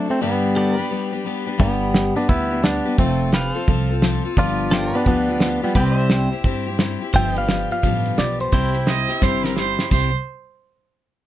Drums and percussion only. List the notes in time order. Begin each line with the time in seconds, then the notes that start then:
1.60 kick, open hi-hat
1.94 snare, open hi-hat
2.29 kick, open hi-hat
2.64 snare, open hi-hat
2.98 kick, open hi-hat
3.33 snare, open hi-hat
3.68 kick, open hi-hat
4.02 snare, open hi-hat
4.37 kick, open hi-hat
4.72 snare, open hi-hat
5.06 kick, open hi-hat
5.40 snare, open hi-hat
5.75 kick, open hi-hat
6.10 snare, open hi-hat
6.44 kick, open hi-hat
6.79 snare, open hi-hat
7.14 kick, closed hi-hat
7.36 closed hi-hat
7.49 snare, closed hi-hat
7.71 closed hi-hat
7.83 kick, closed hi-hat
8.06 closed hi-hat
8.18 snare, closed hi-hat
8.40 closed hi-hat
8.52 kick, closed hi-hat
8.75 closed hi-hat
8.87 snare, closed hi-hat
9.10 closed hi-hat
9.22 kick, snare
9.44 snare
9.57 snare
9.79 snare
9.91 kick, crash